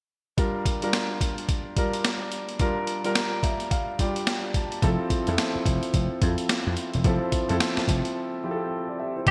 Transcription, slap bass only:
4.83 F1
5.11 muted slap bass stroke
5.28 F2
5.55 muted slap bass stroke
5.66 F1
5.94 F1
6.22 F2
6.67 F2
6.94 E1
7.05 F1
7.33 muted slap bass stroke
7.50 F2
7.77 muted slap bass stroke
7.88 F1
9.27 G1

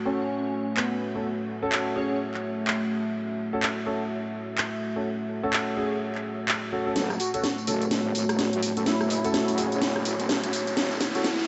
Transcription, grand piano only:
0.05 C#4 F#4 A4
1.15 C#4 F#4 A4
1.62 C#4 F#4 A4
1.96 C#4 F#4 G#4
3.53 C#4 F#4 A4
3.86 C#4 F#4 A4
4.96 C#4 F#4 A4
5.43 C#4 F#4 A4
5.77 C#4 F#4 G#4
6.72 C#4 F#4 A4
6.86 C#4 F#4 A4
7.34 C#4 F#4 A4
7.67 C#4 F#4 A4
8.77 C#4 F#4 A4
9.25 C#4 F#4 A4
9.58 C#4 F#4 G#4
11.15 C#4 F#4 A4

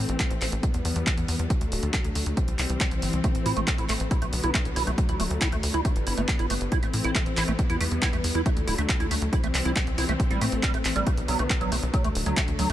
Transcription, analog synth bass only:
0.09 A1
0.31 A1
0.41 A1
0.52 A1
0.74 E2
0.85 E2
0.96 E2
1.17 E2
1.28 E2
1.39 E2
1.61 D2
1.72 D1
1.83 D2
2.04 D2
2.15 D2
2.26 D2
2.48 C2
2.59 C2
2.70 C2
2.91 C2
3.02 G1
3.13 C2
3.35 A1
3.46 A2
3.57 A1
3.78 A1
3.89 A1
4.00 A1
4.22 B1
4.33 B1
4.44 B1
4.65 B1
4.76 B1
4.87 B1
5.09 D2
5.20 D1
5.31 D2
5.52 D2
5.63 D2
5.74 D2
5.96 G1
6.07 G1
6.17 G1
6.39 G1
6.50 G1
6.61 G1
6.83 A1
6.94 A2
7.04 A1
7.26 A1
7.37 A1
7.48 A1
7.70 E2
7.81 E2
7.91 E2
8.13 E2
8.24 E2
8.35 E2
8.56 D2
8.67 D1
8.78 D2
9.00 D2
9.11 D2
9.22 D2
9.43 C2
9.54 C2
9.65 C2
9.87 C2
9.98 C2
10.09 C2
10.30 A1
10.41 A2
10.52 A1
10.74 A1
10.85 A1
10.96 A1
11.17 B1
11.28 B1
11.39 B1
11.61 B1
11.72 B1
11.83 B1
12.04 D2
12.15 D1
12.26 D2
12.48 D2
12.59 D2

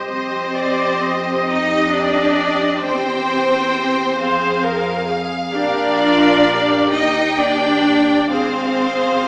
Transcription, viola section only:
Already playing: G4
0.09 C5
0.56 D5
1.02 D#5
2.83 C5
4.19 G#4 C5
4.64 A#4
5.09 G#4
5.54 G4 A#4
6.00 F4
6.47 G4
6.93 G4
8.32 G#4
8.78 G#4
9.24 G4

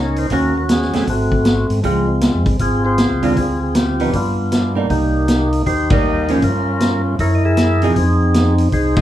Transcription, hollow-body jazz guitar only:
0.31 D#3 A#3 C#4 F#4
0.93 F#3 A3 C4
1.84 F3 G#3 C4
3.22 D3 G#3 C4 F4
4.00 F3 B3 D#4
4.75 G3 A#3 D#4
5.91 G3 A#3 D#4
6.29 F3 A#3 C#4
7.83 F3 C4 D#4 G#4

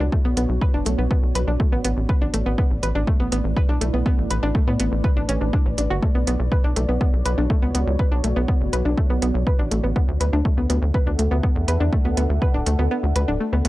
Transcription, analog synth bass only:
0.24 B1
0.37 B1
0.49 B1
0.74 F#1
0.86 B1
0.98 B1
1.23 B1
1.35 B1
1.47 B1
1.72 A1
1.84 A1
1.97 A1
2.21 A1
2.34 A1
2.46 A1
2.71 A1
2.83 A1
2.95 A1
3.20 A1
3.32 A1
3.44 A1
3.69 B1
3.81 B1
3.93 B1
4.18 A1
4.30 A1
4.43 A1
4.67 A2
4.80 A1
4.92 A1
5.17 A1
5.29 A1
5.41 A1
5.66 A1
5.78 A1
5.90 G1
6.15 B1
6.27 B1
6.39 B1
6.64 B1
6.76 B1
6.89 B1
7.13 B1
7.25 B1
7.38 B1
7.62 C#2
7.75 C#2
7.87 C#2
8.11 B1
8.24 B1
8.36 B1
8.61 F#1
8.73 B1
8.85 B1
9.10 B1
9.22 B1
9.34 B1
9.59 A1
9.71 A1
9.84 A1
10.08 D2
10.20 D2
10.33 D2
10.57 D2
10.70 D2
10.82 D2
11.07 D2
11.19 D2
11.31 D2
11.56 E2
11.68 E2
11.80 E2
12.05 D2
12.17 D2
12.30 D2
12.54 D1
12.66 D2
12.79 D2
13.03 D2
13.16 D2
13.28 D1
13.53 D2
13.65 D2

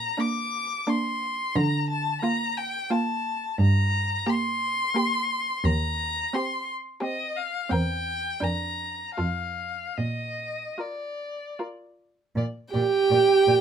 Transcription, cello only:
1.56 D3
3.59 G2
5.64 D#2
7.71 E2
8.42 F2
9.18 F2
9.98 A#2
12.36 A#2
12.74 A#2
13.11 A#2
13.47 A#2

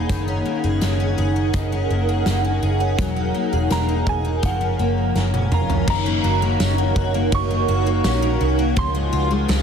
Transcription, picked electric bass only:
0.10 F#1
0.64 F#1
0.82 F#1
1.18 F#1
1.54 F#1
1.90 F#1
2.26 F#1
2.63 F#1
2.99 E1
3.53 E1
3.71 E1
4.07 E1
4.43 F#1
4.79 F#1
5.16 F#1
5.52 F1
5.88 F#1
6.24 F#1
6.60 F#1
6.96 F#1
7.32 F#1
7.69 F#1
8.05 A#1
8.41 C2
8.77 C#2
9.13 C#2
9.49 C#2

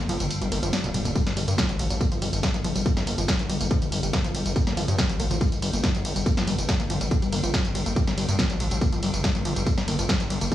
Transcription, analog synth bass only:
0.09 G1
0.20 G1
0.41 G1
0.52 G1
0.63 G1
0.84 D1
0.94 D1
1.05 D1
1.27 G1
1.37 G1
1.48 G2
1.69 A1
1.79 A1
1.91 A1
2.12 G1
2.22 G1
2.33 G1
2.54 G1
2.65 G1
2.76 G1
2.97 G1
3.07 G1
3.18 G1
3.39 G1
3.50 G1
3.61 G1
3.82 G1
3.92 G1
4.03 G1
4.24 G1
4.35 G1
4.46 G1
4.67 G1
4.77 G1
4.88 G2
5.10 A1
5.20 A1
5.31 A1
5.52 G1
5.62 G1
5.73 G1
5.95 G1
6.05 G1
6.16 G1
6.37 G1
6.47 G1
6.58 G1
6.80 G1
6.90 G1
7.01 G1
7.22 G1
7.33 G1
7.44 G1
7.65 G1
7.75 G1
7.86 G1
8.07 G1
8.18 G1
8.29 G2
8.50 A1
8.60 A1
8.71 A1
8.93 G1
9.03 G1
9.14 G1
9.35 G1
9.45 G1
9.56 G1
9.78 G1
9.88 G1
9.99 G1
10.20 G1
10.30 G1
10.41 G1

